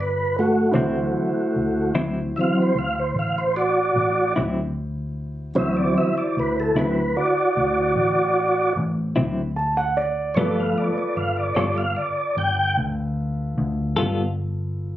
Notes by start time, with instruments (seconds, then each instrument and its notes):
Already playing: fingered electric bass G1, grand piano F4 A4 B4
0.00 tonewheel organ B4
0.39 tonewheel organ A3 F#4
0.71 clean electric guitar D3 F#3 C4, grand piano E4 F#4 C5
0.76 fingered electric bass D2, tonewheel organ E3 F#3 C4, clean electric guitar E4
1.56 fingered electric bass D2
1.95 fingered electric bass D2, clean electric guitar D3 F#3 C4 E4
2.36 tonewheel organ E3 F#3 C4 E5
2.41 tonewheel organ F5
2.62 tonewheel organ C5
2.75 fingered electric bass D2, tonewheel organ F5
3.00 tonewheel organ C5
3.14 fingered electric bass A1
3.19 tonewheel organ F5
3.38 tonewheel organ C5
3.56 tonewheel organ F#4 D5
3.96 fingered electric bass A1
4.36 fingered electric bass D2, clean electric guitar D3 F#3 C4 E4
5.55 fingered electric bass D2, tonewheel organ E3 F#3 C4 E5, grand piano E4 F#4 C5
5.77 tonewheel organ D5
5.98 tonewheel organ E5
6.18 tonewheel organ D5
6.37 fingered electric bass D2, tonewheel organ B4
6.60 tonewheel organ A4
6.75 fingered electric bass D2, clean electric guitar D3 F#3 C4 E4, tonewheel organ B4
7.17 tonewheel organ F#4 D5
7.57 fingered electric bass D2
7.96 fingered electric bass A1
8.77 fingered electric bass A1
9.16 fingered electric bass D2, clean electric guitar D3 F#3 C4 E4
9.56 grand piano A5
9.77 grand piano F#5
9.97 grand piano D5
10.34 fingered electric bass G1, tonewheel organ F3 A3 B3 C#5, clean electric guitar G3 B3 F4, grand piano F4 A4 B4
10.39 clean electric guitar A4, tonewheel organ D5
10.59 tonewheel organ F5
10.78 tonewheel organ D5
10.98 tonewheel organ D5
11.17 fingered electric bass G1, tonewheel organ F5
11.37 tonewheel organ D5
11.55 fingered electric bass G1, clean electric guitar G3 B3 F4 A4, tonewheel organ C#5 D5
11.78 tonewheel organ F5
11.96 tonewheel organ D5
12.37 fingered electric bass G1, tonewheel organ G5
12.77 fingered electric bass D2
13.58 fingered electric bass D2
13.97 fingered electric bass G1, clean electric guitar G3 B3 F4 A4